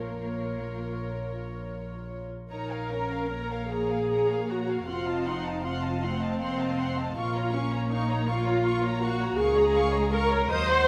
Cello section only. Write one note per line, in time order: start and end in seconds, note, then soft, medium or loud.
0.00 1.22 A#3 medium
2.51 2.88 D#4 medium
2.91 3.31 C#4 soft
3.31 4.88 A#3 medium
4.88 6.00 C4 medium
6.02 6.41 A3 medium
6.40 6.78 A#3 medium
6.79 7.15 A3 medium
7.16 9.39 A#3 medium
9.39 10.50 G#3 medium
10.50 10.86 F#3 medium